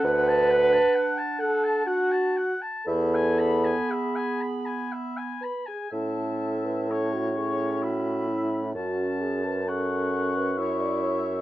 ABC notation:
X:1
M:3/4
L:1/16
Q:1/4=64
K:A
V:1 name="Flute"
f8- f2 z2 | b8- b2 z2 | a4 c'4 b4 | a4 c'8 |]
V:2 name="Oboe"
f a f a f a f a f a f a | e g b g e g b g e g b g | e4 c4 e4 | a4 f4 e4 |]
V:3 name="French horn"
B6 A2 F3 z | A4 G4 z2 B G | A3 B A F G2 F2 E2 | F2 G B A3 B c d c2 |]
V:4 name="Clarinet"
D8- D2 z2 | B,8- B,2 z2 | C4 C8 | C4 C4 E4 |]
V:5 name="Bassoon" clef=bass
D,,4 z8 | E,,4 z8 | A,,12 | F,,12 |]